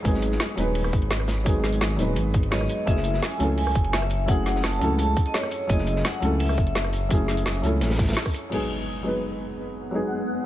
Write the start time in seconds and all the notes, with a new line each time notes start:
Already playing: F#3 G#3 B3 D#4 G#4 B4
0.02 G#1 F#3 G#3 B3 D#4, kick, closed hi-hat
0.07 G#4
0.14 snare
0.22 closed hi-hat
0.32 snare
0.40 snare, closed hi-hat
0.49 closed hi-hat
0.55 D#1 F#3 G#3 B3 D#4, closed hi-hat
0.60 B4
0.75 closed hi-hat, open hi-hat
0.84 cross-stick
0.93 G#1, kick, closed hi-hat
1.02 closed hi-hat
1.11 snare, closed hi-hat
1.20 cross-stick
1.28 snare, closed hi-hat
1.44 F#3 G#3 B3 D#4, kick, closed hi-hat
1.48 G#4
1.64 cross-stick, snare, closed hi-hat
1.73 closed hi-hat
1.81 snare, closed hi-hat
1.90 closed hi-hat
1.97 D#1 F#3 G#3 B3 D#4, closed hi-hat
2.01 B4
2.16 G#1, closed hi-hat
2.34 kick, closed hi-hat
2.43 closed hi-hat
2.51 F#3 G#3 B3 D#4 C#5 D#5, snare, closed hi-hat
2.61 cross-stick, snare
2.69 closed hi-hat
2.85 F#1 F#3 A3 C#4 E4 E5, kick, closed hi-hat
2.90 G#4
2.97 snare
3.04 closed hi-hat
3.14 snare
3.22 G#5, snare, closed hi-hat
3.31 closed hi-hat
3.38 C#2 F#3 A3 C#4 E4, closed hi-hat
3.42 A4
3.58 G#5, closed hi-hat, open hi-hat
3.67 cross-stick
3.75 F#1, kick, closed hi-hat
3.85 closed hi-hat
3.93 E5, snare, closed hi-hat
4.02 cross-stick
4.10 closed hi-hat
4.26 F#3 A3 C#4 E4 F#5, kick, closed hi-hat
4.31 G#4
4.46 snare, closed hi-hat
4.55 snare
4.63 A5, snare, closed hi-hat
4.73 closed hi-hat
4.79 C#2 F#3 A3 C#4 E4, closed hi-hat
4.83 A4
4.99 A5, closed hi-hat
5.17 kick, closed hi-hat
5.26 D#5, closed hi-hat
5.34 C#5, snare, closed hi-hat
5.43 cross-stick, snare
5.51 closed hi-hat
5.67 F#1 F#3 A3 C#4 E4 D#5, kick, closed hi-hat
5.72 G#4
5.78 snare
5.87 closed hi-hat
5.96 snare
6.04 F#5, snare, closed hi-hat
6.14 closed hi-hat
6.20 C#2 F#3 A3 C#4 E4, closed hi-hat
6.25 A4
6.40 E5, closed hi-hat, open hi-hat
6.49 cross-stick
6.58 F#1, kick, closed hi-hat
6.67 closed hi-hat
6.75 snare, closed hi-hat
6.84 cross-stick
6.93 closed hi-hat
7.09 F#3 A3 C#4 E4, kick, closed hi-hat
7.13 G#4
7.28 snare, closed hi-hat
7.37 closed hi-hat
7.46 snare, closed hi-hat
7.55 closed hi-hat
7.62 C#2 F#3 A3 C#4 E4, closed hi-hat
7.66 A4
7.81 A1, snare, closed hi-hat
7.90 snare, closed hi-hat
7.94 snare, closed hi-hat
7.99 kick, snare, closed hi-hat
8.03 snare, closed hi-hat
8.08 snare, closed hi-hat
8.12 snare, closed hi-hat
8.17 snare, closed hi-hat, open hi-hat
8.26 kick, cross-stick, closed hi-hat
8.34 closed hi-hat
8.50 F#3 G#3 B3 D#4 F#5, crash, impact
8.54 G#4
9.03 F#3 G#3 B3 D#4
9.07 B4
9.91 F#3 G#3 B3 D#4
9.95 G#4